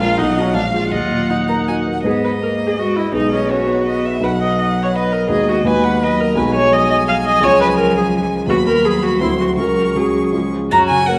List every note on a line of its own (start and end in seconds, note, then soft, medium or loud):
0.00 0.18 A#1 soft
0.00 0.21 G#3 soft
0.00 0.19 F4 medium
0.00 0.17 F4 soft
0.00 0.17 A#4 soft
0.00 0.20 F5 medium
0.00 0.20 F5 soft
0.17 0.54 B1 soft
0.17 0.57 F#3 soft
0.17 0.43 D#4 medium
0.17 0.54 D#5 soft
0.17 0.55 F#5 soft
0.37 0.53 D#4 soft
0.37 0.53 F#4 soft
0.42 0.53 C#4 medium
0.53 0.91 A#1 soft
0.53 0.95 G#3 soft
0.53 0.61 D4 soft
0.53 0.93 F5 soft
0.53 0.92 F5 soft
0.74 0.91 F4 soft
0.74 0.91 G#4 soft
0.80 0.91 F4 soft
0.91 2.02 D#2 soft
0.91 1.88 F#3 soft
0.91 1.31 F4 medium
0.91 1.26 D#5 soft
0.91 1.85 F#5 soft
1.11 1.42 A#2 soft
1.29 1.87 D#4 soft
1.29 1.61 D#4 soft
1.29 1.37 F#5 soft
1.48 1.79 A#3 soft
1.48 1.56 A#5 soft
1.68 1.98 F#4 soft
1.68 1.76 G#5 soft
1.87 2.06 A#3 soft
1.93 2.05 F#5 soft
2.03 3.10 G#2 soft
2.03 3.10 B3 soft
2.03 2.40 B3 soft
2.03 3.11 D#4 soft
2.03 3.11 G#4 soft
2.03 2.13 G#4 medium
2.03 3.10 D#5 soft
2.24 2.31 B4 medium
2.42 2.80 A#3 soft
2.42 2.50 A#4 medium
2.67 2.71 G#4 medium
2.78 3.14 G#3 soft
2.78 2.98 F#4 medium
2.96 3.14 E4 medium
3.12 4.18 B1 soft
3.12 3.52 G#3 soft
3.12 4.19 B3 soft
3.12 4.19 D#4 soft
3.12 3.32 D#4 medium
3.12 4.19 G#4 soft
3.12 3.52 D#5 soft
3.32 3.52 C#4 soft
3.50 3.69 C#4 soft
3.50 4.05 F#4 medium
3.50 3.86 C#5 soft
3.68 3.85 B3 soft
3.86 4.23 B3 soft
3.86 4.07 D#5 soft
4.05 4.26 E5 soft
4.20 5.26 B1 soft
4.20 5.30 F#3 soft
4.20 5.26 B3 soft
4.20 5.26 D#4 soft
4.20 5.27 F#4 soft
4.20 4.30 B4 medium
4.20 4.58 F#5 soft
4.41 4.58 D#5 medium
4.59 4.67 D#5 medium
4.59 4.97 F#5 soft
4.83 4.87 C#5 medium
4.94 5.13 B4 medium
4.94 5.30 D#5 soft
5.12 5.29 A#4 medium
5.28 5.63 D#2 soft
5.28 6.04 G#3 soft
5.28 5.63 B3 soft
5.28 5.64 D#4 soft
5.28 5.64 F#4 soft
5.28 5.50 G#4 medium
5.28 5.68 D#5 soft
5.48 5.66 F#4 medium
5.64 6.34 D#2 soft
5.64 6.34 B3 soft
5.64 6.34 D#4 soft
5.64 6.35 F#4 soft
5.64 6.01 B4 medium
5.64 5.85 G#5 soft
5.84 6.05 F#5 soft
6.02 6.37 F#3 soft
6.02 6.22 B4 medium
6.02 6.38 D#5 soft
6.20 6.39 A#4 medium
6.36 7.39 B1 soft
6.36 7.39 F#3 medium
6.36 7.39 G#3 soft
6.36 7.39 D#4 soft
6.36 7.40 F#4 soft
6.36 6.54 B4 medium
6.36 8.46 G#5 medium
6.55 6.74 C#5 medium
6.73 6.90 D#5 medium
6.90 6.97 D#5 medium
7.08 7.15 F5 medium
7.25 7.45 D#5 medium
7.40 8.45 C#2 soft
7.40 8.45 F3 medium
7.40 8.45 G#3 soft
7.40 8.45 C#4 soft
7.40 8.46 F4 soft
7.40 7.60 C#5 medium
7.61 7.68 B4 medium
7.78 7.95 A#4 medium
7.97 8.04 G#4 medium
8.47 9.18 D#2 soft
8.47 9.18 F#3 soft
8.47 10.30 F#3 medium
8.47 9.18 B3 soft
8.47 9.18 F#4 soft
8.47 8.56 F#4 medium
8.47 9.17 B5 medium
8.67 8.87 A#4 medium
8.85 9.04 G#4 medium
9.03 9.21 F#4 medium
9.19 9.56 D2 soft
9.19 9.56 F#3 soft
9.19 9.56 C4 soft
9.19 9.29 E4 medium
9.19 9.57 F#4 soft
9.19 9.56 C6 soft
9.41 9.48 F#4 medium
9.57 9.94 C#2 soft
9.57 9.94 F#3 soft
9.57 9.95 C#4 soft
9.57 9.95 F#4 soft
9.57 9.98 A#4 medium
9.57 10.49 C#6 soft
9.95 10.31 C#2 soft
9.95 10.32 F#3 soft
9.95 10.32 C#4 soft
9.95 10.33 F#4 soft
9.95 10.53 G#4 soft
10.32 10.69 C#2 soft
10.32 10.52 F3 soft
10.32 10.70 G#3 soft
10.32 10.70 C#4 soft
10.32 10.70 F4 soft
10.71 11.19 F#2 soft
10.71 11.05 C#4 soft
10.71 11.05 F#4 soft
10.71 10.79 A#5 medium
10.89 11.19 C#3 soft
10.89 11.08 G#5 medium
11.07 11.19 A#3 soft
11.07 11.19 C#4 soft
11.07 11.19 F#4 soft
11.07 11.19 A#4 medium
11.07 11.19 F#5 medium